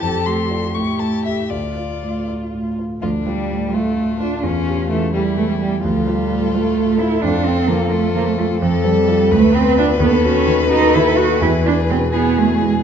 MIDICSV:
0, 0, Header, 1, 5, 480
1, 0, Start_track
1, 0, Tempo, 495868
1, 30, Time_signature, 6, 3, 24, 8
1, 3391, Tempo, 464037
1, 10591, Tempo, 481541
1, 12951, End_track
2, 0, Start_track
2, 0, Title_t, "Violin"
2, 0, Program_c, 0, 40
2, 17, Note_on_c, 0, 81, 79
2, 255, Note_on_c, 0, 84, 74
2, 269, Note_off_c, 0, 81, 0
2, 721, Note_on_c, 0, 85, 61
2, 736, Note_off_c, 0, 84, 0
2, 962, Note_on_c, 0, 81, 61
2, 976, Note_off_c, 0, 85, 0
2, 1208, Note_off_c, 0, 81, 0
2, 1213, Note_on_c, 0, 76, 61
2, 1456, Note_on_c, 0, 74, 52
2, 1470, Note_off_c, 0, 76, 0
2, 2199, Note_off_c, 0, 74, 0
2, 2928, Note_on_c, 0, 62, 60
2, 3594, Note_off_c, 0, 62, 0
2, 3632, Note_on_c, 0, 65, 58
2, 5049, Note_off_c, 0, 65, 0
2, 5082, Note_on_c, 0, 64, 61
2, 5793, Note_off_c, 0, 64, 0
2, 5805, Note_on_c, 0, 69, 73
2, 7208, Note_off_c, 0, 69, 0
2, 7252, Note_on_c, 0, 65, 78
2, 7941, Note_off_c, 0, 65, 0
2, 7947, Note_on_c, 0, 65, 70
2, 8653, Note_off_c, 0, 65, 0
2, 8665, Note_on_c, 0, 69, 87
2, 9406, Note_on_c, 0, 71, 95
2, 9421, Note_off_c, 0, 69, 0
2, 12240, Note_off_c, 0, 71, 0
2, 12246, Note_on_c, 0, 68, 71
2, 12951, Note_off_c, 0, 68, 0
2, 12951, End_track
3, 0, Start_track
3, 0, Title_t, "Violin"
3, 0, Program_c, 1, 40
3, 26, Note_on_c, 1, 69, 56
3, 690, Note_off_c, 1, 69, 0
3, 724, Note_on_c, 1, 67, 52
3, 1452, Note_on_c, 1, 65, 47
3, 1466, Note_off_c, 1, 67, 0
3, 2724, Note_off_c, 1, 65, 0
3, 2922, Note_on_c, 1, 65, 66
3, 3000, Note_off_c, 1, 65, 0
3, 3155, Note_on_c, 1, 55, 64
3, 3634, Note_on_c, 1, 57, 67
3, 3650, Note_off_c, 1, 55, 0
3, 4105, Note_off_c, 1, 57, 0
3, 4111, Note_on_c, 1, 62, 64
3, 4346, Note_off_c, 1, 62, 0
3, 4352, Note_on_c, 1, 61, 74
3, 4827, Note_off_c, 1, 61, 0
3, 4832, Note_on_c, 1, 57, 71
3, 5071, Note_off_c, 1, 57, 0
3, 5083, Note_on_c, 1, 55, 76
3, 5166, Note_off_c, 1, 55, 0
3, 5331, Note_on_c, 1, 57, 72
3, 5438, Note_off_c, 1, 57, 0
3, 5444, Note_on_c, 1, 55, 63
3, 5493, Note_off_c, 1, 55, 0
3, 5568, Note_on_c, 1, 55, 64
3, 5801, Note_off_c, 1, 55, 0
3, 5807, Note_on_c, 1, 65, 63
3, 7236, Note_on_c, 1, 69, 71
3, 7251, Note_off_c, 1, 65, 0
3, 8668, Note_off_c, 1, 69, 0
3, 8682, Note_on_c, 1, 69, 79
3, 9398, Note_on_c, 1, 71, 80
3, 9413, Note_off_c, 1, 69, 0
3, 10101, Note_off_c, 1, 71, 0
3, 10108, Note_on_c, 1, 69, 84
3, 10809, Note_off_c, 1, 69, 0
3, 10825, Note_on_c, 1, 69, 80
3, 11524, Note_on_c, 1, 68, 77
3, 11539, Note_off_c, 1, 69, 0
3, 12242, Note_off_c, 1, 68, 0
3, 12248, Note_on_c, 1, 68, 70
3, 12951, Note_off_c, 1, 68, 0
3, 12951, End_track
4, 0, Start_track
4, 0, Title_t, "Grand piano"
4, 0, Program_c, 2, 0
4, 0, Control_c, 2, 64, 127
4, 21, Note_on_c, 2, 41, 54
4, 50, Control_c, 2, 64, 0
4, 205, Control_c, 2, 64, 127
4, 252, Note_on_c, 2, 57, 41
4, 486, Note_on_c, 2, 65, 37
4, 492, Note_on_c, 2, 74, 39
4, 631, Note_off_c, 2, 57, 0
4, 702, Note_off_c, 2, 65, 0
4, 704, Note_off_c, 2, 41, 0
4, 705, Note_off_c, 2, 74, 0
4, 731, Note_on_c, 2, 45, 44
4, 748, Control_c, 2, 64, 0
4, 904, Control_c, 2, 64, 127
4, 962, Note_on_c, 2, 57, 38
4, 1218, Note_on_c, 2, 76, 37
4, 1219, Note_on_c, 2, 67, 33
4, 1355, Note_off_c, 2, 57, 0
4, 1437, Note_off_c, 2, 45, 0
4, 1438, Note_off_c, 2, 67, 0
4, 1438, Note_off_c, 2, 76, 0
4, 1458, Note_on_c, 2, 38, 42
4, 1478, Control_c, 2, 64, 0
4, 1628, Control_c, 2, 64, 127
4, 1713, Note_on_c, 2, 65, 36
4, 1968, Note_on_c, 2, 45, 31
4, 2105, Note_off_c, 2, 65, 0
4, 2208, Note_on_c, 2, 65, 33
4, 2353, Note_off_c, 2, 45, 0
4, 2463, Note_on_c, 2, 45, 32
4, 2594, Note_off_c, 2, 65, 0
4, 2701, Note_on_c, 2, 65, 33
4, 2843, Note_off_c, 2, 45, 0
4, 2888, Note_off_c, 2, 38, 0
4, 2932, Note_on_c, 2, 38, 54
4, 2934, Note_off_c, 2, 65, 0
4, 2946, Control_c, 2, 64, 0
4, 3111, Control_c, 2, 64, 127
4, 3159, Note_on_c, 2, 65, 45
4, 3400, Note_on_c, 2, 45, 41
4, 3537, Note_off_c, 2, 65, 0
4, 3637, Note_on_c, 2, 65, 47
4, 3784, Note_off_c, 2, 45, 0
4, 3876, Note_on_c, 2, 45, 44
4, 4021, Note_off_c, 2, 65, 0
4, 4116, Note_on_c, 2, 65, 44
4, 4260, Note_off_c, 2, 45, 0
4, 4317, Note_off_c, 2, 38, 0
4, 4354, Note_on_c, 2, 40, 59
4, 4356, Note_off_c, 2, 65, 0
4, 4376, Control_c, 2, 64, 0
4, 4553, Control_c, 2, 64, 127
4, 4604, Note_on_c, 2, 67, 49
4, 4847, Note_on_c, 2, 52, 44
4, 4986, Note_off_c, 2, 67, 0
4, 5072, Note_on_c, 2, 67, 48
4, 5228, Note_off_c, 2, 52, 0
4, 5326, Note_on_c, 2, 52, 49
4, 5464, Note_off_c, 2, 67, 0
4, 5571, Note_on_c, 2, 67, 48
4, 5712, Note_off_c, 2, 52, 0
4, 5763, Note_off_c, 2, 40, 0
4, 5806, Note_on_c, 2, 38, 67
4, 5809, Note_off_c, 2, 67, 0
4, 5824, Control_c, 2, 64, 0
4, 6001, Control_c, 2, 64, 127
4, 6049, Note_on_c, 2, 65, 51
4, 6285, Note_on_c, 2, 45, 50
4, 6432, Note_off_c, 2, 65, 0
4, 6541, Note_on_c, 2, 65, 55
4, 6667, Note_off_c, 2, 45, 0
4, 6771, Note_on_c, 2, 45, 55
4, 6912, Note_off_c, 2, 65, 0
4, 7012, Note_on_c, 2, 65, 54
4, 7146, Note_off_c, 2, 45, 0
4, 7196, Note_off_c, 2, 38, 0
4, 7243, Note_off_c, 2, 65, 0
4, 7248, Note_on_c, 2, 41, 70
4, 7256, Control_c, 2, 64, 0
4, 7446, Control_c, 2, 64, 127
4, 7485, Note_on_c, 2, 65, 56
4, 7713, Note_on_c, 2, 53, 56
4, 7860, Note_off_c, 2, 65, 0
4, 7954, Note_on_c, 2, 65, 61
4, 8095, Note_off_c, 2, 53, 0
4, 8199, Note_on_c, 2, 53, 57
4, 8334, Note_off_c, 2, 65, 0
4, 8435, Note_on_c, 2, 65, 58
4, 8577, Note_off_c, 2, 53, 0
4, 8633, Note_off_c, 2, 41, 0
4, 8672, Note_off_c, 2, 65, 0
4, 8682, Note_on_c, 2, 41, 76
4, 8687, Control_c, 2, 64, 0
4, 8855, Control_c, 2, 64, 127
4, 8913, Note_on_c, 2, 60, 63
4, 9162, Note_on_c, 2, 65, 57
4, 9168, Note_on_c, 2, 69, 66
4, 9301, Note_off_c, 2, 60, 0
4, 9376, Note_off_c, 2, 65, 0
4, 9379, Note_off_c, 2, 69, 0
4, 9381, Note_off_c, 2, 41, 0
4, 9402, Note_on_c, 2, 38, 85
4, 9417, Control_c, 2, 64, 0
4, 9564, Control_c, 2, 64, 127
4, 9638, Note_on_c, 2, 59, 67
4, 9885, Note_on_c, 2, 65, 60
4, 9889, Note_on_c, 2, 71, 65
4, 10017, Note_off_c, 2, 59, 0
4, 10092, Note_off_c, 2, 38, 0
4, 10093, Note_off_c, 2, 65, 0
4, 10096, Note_off_c, 2, 71, 0
4, 10108, Note_on_c, 2, 39, 79
4, 10128, Control_c, 2, 64, 0
4, 10314, Control_c, 2, 64, 127
4, 10359, Note_on_c, 2, 66, 67
4, 10594, Note_on_c, 2, 51, 65
4, 10735, Note_off_c, 2, 66, 0
4, 10830, Note_on_c, 2, 66, 61
4, 10969, Note_off_c, 2, 51, 0
4, 11078, Note_on_c, 2, 51, 64
4, 11206, Note_off_c, 2, 66, 0
4, 11300, Note_on_c, 2, 66, 63
4, 11447, Note_off_c, 2, 51, 0
4, 11492, Note_off_c, 2, 39, 0
4, 11534, Note_off_c, 2, 66, 0
4, 11537, Note_on_c, 2, 40, 79
4, 11550, Control_c, 2, 64, 0
4, 11703, Control_c, 2, 64, 127
4, 11765, Note_on_c, 2, 64, 58
4, 12012, Note_on_c, 2, 47, 55
4, 12151, Note_off_c, 2, 64, 0
4, 12254, Note_on_c, 2, 64, 59
4, 12396, Note_off_c, 2, 47, 0
4, 12493, Note_on_c, 2, 47, 52
4, 12642, Note_off_c, 2, 64, 0
4, 12731, Note_on_c, 2, 64, 51
4, 12891, Note_off_c, 2, 47, 0
4, 12951, Note_off_c, 2, 40, 0
4, 12951, Note_off_c, 2, 64, 0
4, 12951, End_track
5, 0, Start_track
5, 0, Title_t, "Cello"
5, 0, Program_c, 3, 42
5, 0, Note_on_c, 3, 67, 71
5, 729, Note_on_c, 3, 64, 55
5, 743, Note_off_c, 3, 67, 0
5, 1453, Note_off_c, 3, 64, 0
5, 1459, Note_on_c, 3, 65, 46
5, 2544, Note_off_c, 3, 65, 0
5, 2915, Note_on_c, 3, 53, 74
5, 2992, Note_off_c, 3, 53, 0
5, 3144, Note_on_c, 3, 55, 74
5, 3625, Note_on_c, 3, 57, 84
5, 3641, Note_off_c, 3, 55, 0
5, 4106, Note_off_c, 3, 57, 0
5, 4112, Note_on_c, 3, 62, 77
5, 4350, Note_on_c, 3, 61, 75
5, 4365, Note_off_c, 3, 62, 0
5, 4835, Note_off_c, 3, 61, 0
5, 4847, Note_on_c, 3, 57, 75
5, 5074, Note_off_c, 3, 57, 0
5, 5080, Note_on_c, 3, 55, 89
5, 5316, Note_on_c, 3, 57, 79
5, 5332, Note_off_c, 3, 55, 0
5, 5448, Note_on_c, 3, 55, 72
5, 5464, Note_off_c, 3, 57, 0
5, 5545, Note_off_c, 3, 55, 0
5, 5552, Note_on_c, 3, 55, 77
5, 5794, Note_off_c, 3, 55, 0
5, 5800, Note_on_c, 3, 53, 81
5, 6038, Note_on_c, 3, 55, 84
5, 6054, Note_off_c, 3, 53, 0
5, 6520, Note_on_c, 3, 57, 99
5, 6535, Note_off_c, 3, 55, 0
5, 6992, Note_on_c, 3, 64, 96
5, 7008, Note_off_c, 3, 57, 0
5, 7229, Note_on_c, 3, 62, 89
5, 7244, Note_off_c, 3, 64, 0
5, 7474, Note_on_c, 3, 60, 99
5, 7489, Note_off_c, 3, 62, 0
5, 7705, Note_on_c, 3, 58, 93
5, 7720, Note_off_c, 3, 60, 0
5, 7953, Note_on_c, 3, 57, 95
5, 7968, Note_off_c, 3, 58, 0
5, 8187, Note_off_c, 3, 57, 0
5, 8193, Note_on_c, 3, 58, 104
5, 8308, Note_off_c, 3, 58, 0
5, 8315, Note_on_c, 3, 57, 91
5, 8361, Note_off_c, 3, 57, 0
5, 8438, Note_on_c, 3, 57, 105
5, 8521, Note_off_c, 3, 57, 0
5, 8668, Note_on_c, 3, 53, 102
5, 8914, Note_on_c, 3, 55, 105
5, 8930, Note_off_c, 3, 53, 0
5, 9391, Note_on_c, 3, 57, 121
5, 9407, Note_off_c, 3, 55, 0
5, 9638, Note_on_c, 3, 60, 115
5, 9653, Note_off_c, 3, 57, 0
5, 9874, Note_off_c, 3, 60, 0
5, 9880, Note_on_c, 3, 62, 116
5, 9963, Note_off_c, 3, 62, 0
5, 10098, Note_on_c, 3, 59, 109
5, 10337, Note_off_c, 3, 59, 0
5, 10353, Note_on_c, 3, 61, 115
5, 10815, Note_off_c, 3, 61, 0
5, 10821, Note_on_c, 3, 63, 125
5, 11067, Note_on_c, 3, 64, 112
5, 11082, Note_off_c, 3, 63, 0
5, 11298, Note_on_c, 3, 66, 115
5, 11313, Note_off_c, 3, 64, 0
5, 11533, Note_off_c, 3, 66, 0
5, 11544, Note_on_c, 3, 64, 108
5, 11624, Note_off_c, 3, 64, 0
5, 11784, Note_on_c, 3, 62, 108
5, 11864, Note_off_c, 3, 62, 0
5, 12023, Note_on_c, 3, 60, 95
5, 12103, Note_off_c, 3, 60, 0
5, 12253, Note_on_c, 3, 59, 108
5, 12499, Note_on_c, 3, 57, 95
5, 12514, Note_off_c, 3, 59, 0
5, 12752, Note_on_c, 3, 56, 81
5, 12767, Note_off_c, 3, 57, 0
5, 12951, Note_off_c, 3, 56, 0
5, 12951, End_track
0, 0, End_of_file